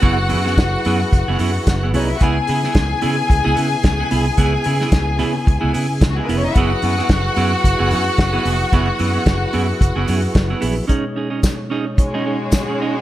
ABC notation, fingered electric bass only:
X:1
M:4/4
L:1/16
Q:"Swing 16ths" 1/4=110
K:B
V:1 name="Fingered electric bass" clef=bass
F,,,2 F,,2 F,,,2 F,,2 F,,, F,,, F,,2 F,,,2 =C,,2 | C,,2 C,2 C,,2 C,2 C,, C,, C,2 C,,2 =C,,2 | C,,2 C,2 C,,2 C,2 C,, C,, C,2 C,,2 ^E,,,2 | F,,,2 F,,2 F,,,2 F,,2 F,,, F,,, F,,2 F,,,2 ^E,,,2 |
F,,,2 F,,2 F,,,2 F,,2 F,,, F,,, F,,2 F,,,2 A,,,2 | z16 |]